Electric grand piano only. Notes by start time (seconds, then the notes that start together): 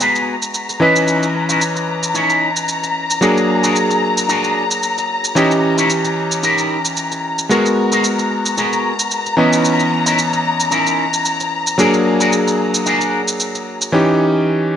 Already playing: G#3 B3 F#4 A#5
0.80 E3 C#4 B4 D#5
3.21 F#3 A#3 D4 G#4
5.35 E3 C#4 G4 D#5
7.49 G#3 B3 F#4 A#4
9.37 E3 B3 C#4 D#5
11.78 F#3 A#3 D4 G#4
13.92 E3 C#4 D#4 G4